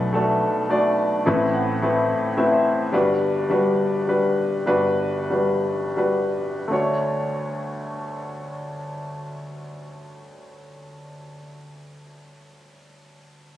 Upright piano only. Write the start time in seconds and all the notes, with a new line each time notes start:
Already playing: B1 B2 A3 D4 F#4 B4
0.13 A3 D4 F#4 A4
0.69 A3 D4 F#4 D5
1.26 A1 A2 A3 C4 E4 B4
1.54 F#5
1.82 A3 C4 E4 B4
2.37 A3 C4 E4 B4 E5
2.52 C5
2.92 G1 G2 G3 D4 F#4 B4
3.50 G3 D4 F#4 B4
4.08 G3 D4 F#4 B4
4.66 G1 G2 G3 D4 F#4 B4
5.30 G3 D4 F#4 B4
5.96 G3 D4 F#4 B4
6.68 D2 A3 D4 F#4
6.73 C#5